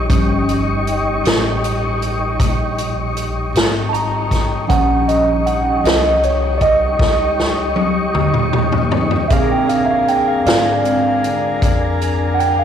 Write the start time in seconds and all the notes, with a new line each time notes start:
0.09 G1 F3 G3 C#4 D#4 C#5, kick, closed hi-hat
0.49 closed hi-hat
0.87 closed hi-hat
1.24 A1, snare, closed hi-hat
1.64 closed hi-hat
2.02 closed hi-hat
2.40 A#1, kick, closed hi-hat
2.78 closed hi-hat
3.17 closed hi-hat
3.53 G#1, closed hi-hat
3.57 snare
3.89 A5
3.93 A#5, closed hi-hat
4.31 kick, snare, closed hi-hat
4.67 A#1 F3 G3 C#4 D#4 C#5 F#5, kick, closed hi-hat
5.08 D#5, closed hi-hat
5.46 F#5, closed hi-hat
5.82 C2 F3 G3 C#4 D#5, closed hi-hat
5.87 snare
6.23 C#5, closed hi-hat
6.58 D5, kick, closed hi-hat
6.62 D#5
6.99 C#2, kick, snare
7.39 snare
7.76 high tom
8.14 D#2, mid tom
8.34 mid tom
8.53 mid tom
8.72 floor tom
8.91 floor tom
9.11 floor tom
9.28 A#2 D3 G#3 D4 G#4 A#4 E5 F5, kick, closed hi-hat
9.32 C4 G#4 F5
9.51 G5
9.66 D3 G#4 A#4 F5, closed hi-hat
9.86 E5
9.91 F5
10.08 G5, closed hi-hat
10.28 F5
10.46 G#2 D5 F5, snare, closed hi-hat
10.83 D3 G#3 C4, closed hi-hat
11.24 closed hi-hat
11.62 F2, kick, closed hi-hat
12.01 closed hi-hat
12.34 F#5
12.39 G5, closed hi-hat
12.59 F5